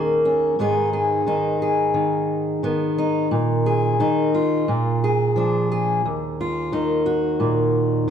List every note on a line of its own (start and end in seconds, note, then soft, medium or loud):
0.00 0.58 D#2 medium
0.00 0.58 D#3 soft
0.00 0.55 A#3 soft
0.00 0.24 C#4 soft
0.00 0.55 G#4 soft
0.25 0.55 C#4 soft
0.59 3.27 G#2 soft
0.59 1.25 D#3 soft
0.59 2.63 B3 soft
0.59 1.26 D#4 soft
0.59 0.93 G#4 soft
0.93 1.62 G#4 soft
1.27 1.93 D#3 soft
1.27 2.97 D#4 soft
1.62 3.28 G#4 soft
1.94 2.62 D#3 soft
2.63 3.99 D#3 soft
2.63 3.27 B3 soft
2.98 3.28 D#4 soft
3.31 3.99 A#2 medium
3.66 4.34 G#4 soft
4.00 4.68 D#3 soft
4.00 4.64 D#4 soft
4.34 5.02 F4 soft
4.68 6.04 A#2 medium
5.04 5.70 G#4 soft
5.36 6.00 F3 soft
5.36 6.00 D4 soft
5.72 6.00 G#4 soft
6.05 8.10 D#2 medium
6.41 7.06 F4 soft
6.72 8.06 D#3 soft
6.72 8.10 D#4 soft
7.06 8.10 F#4 soft
7.40 8.08 A#2 soft